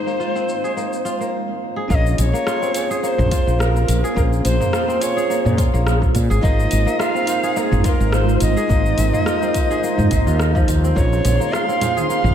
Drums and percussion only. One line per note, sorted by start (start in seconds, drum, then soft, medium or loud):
0.08 shaker soft
0.21 shaker soft
0.36 shaker soft
0.49 shaker medium
0.65 shaker soft
0.78 shaker soft
0.93 shaker soft
1.06 shaker medium
1.21 shaker soft
1.90 kick loud
1.90 shaker soft
2.06 shaker soft
2.18 closed hi-hat medium
2.18 shaker medium
2.35 shaker soft
2.47 cross-stick loud
2.47 shaker soft
2.63 shaker soft
2.74 closed hi-hat medium
2.74 shaker medium
2.91 shaker soft
3.04 shaker soft
3.18 mid tom medium
3.18 shaker soft
3.31 kick loud
3.31 closed hi-hat medium
3.31 shaker medium
3.48 shaker soft
3.60 cross-stick loud
3.60 shaker soft
3.76 shaker soft
3.88 closed hi-hat loud
3.88 shaker medium
4.05 shaker soft
4.17 kick loud
4.17 shaker soft
4.33 shaker soft
4.45 closed hi-hat medium
4.45 shaker medium
4.61 mid tom medium
4.61 shaker soft
4.73 cross-stick loud
4.73 shaker soft
4.90 shaker soft
5.01 closed hi-hat medium
5.01 shaker medium
5.18 shaker soft
5.31 shaker soft
5.45 mid tom medium
5.45 shaker soft
5.58 kick loud
5.58 closed hi-hat medium
5.58 shaker medium
5.75 shaker soft
5.87 cross-stick loud
5.87 shaker soft
6.02 kick loud
6.02 shaker soft
6.15 kick medium
6.15 closed hi-hat medium
6.15 shaker medium
6.31 shaker soft
6.43 kick loud
6.43 shaker soft
6.60 shaker soft
6.71 closed hi-hat medium
6.71 shaker medium
6.88 shaker soft
7.00 cross-stick loud
7.00 shaker soft
7.16 shaker soft
7.27 closed hi-hat medium
7.27 shaker medium
7.44 shaker soft
7.57 shaker soft
7.72 mid tom medium
7.72 shaker soft
7.84 kick loud
7.84 closed hi-hat medium
7.84 shaker medium
8.01 shaker soft
8.12 cross-stick loud
8.12 shaker soft
8.29 shaker soft
8.40 closed hi-hat medium
8.40 shaker medium
8.57 shaker soft
8.70 kick loud
8.70 shaker soft
8.86 shaker soft
8.98 closed hi-hat medium
8.98 shaker medium
9.13 mid tom medium
9.13 shaker soft
9.26 cross-stick loud
9.26 shaker soft
9.42 shaker soft
9.54 kick medium
9.54 closed hi-hat medium
9.54 shaker medium
9.71 shaker soft
9.84 shaker soft
9.98 mid tom medium
9.98 shaker soft
10.11 kick loud
10.11 closed hi-hat medium
10.11 shaker medium
10.27 shaker soft
10.39 cross-stick loud
10.39 shaker soft
10.55 kick loud
10.55 shaker soft
10.68 kick medium
10.68 closed hi-hat medium
10.68 shaker medium
10.85 shaker soft
10.96 kick loud
10.96 shaker soft
11.13 high bongo soft
11.13 shaker soft
11.25 closed hi-hat medium
11.25 low conga medium
11.25 shaker medium
11.40 high conga medium
11.40 shaker soft
11.53 cross-stick loud
11.53 shaker soft
11.69 shaker soft
11.81 closed hi-hat medium
11.81 low conga medium
11.81 shaker medium
11.98 high conga medium
11.98 shaker soft
12.10 shaker soft
12.25 mid tom medium
12.25 high conga medium
12.25 shaker soft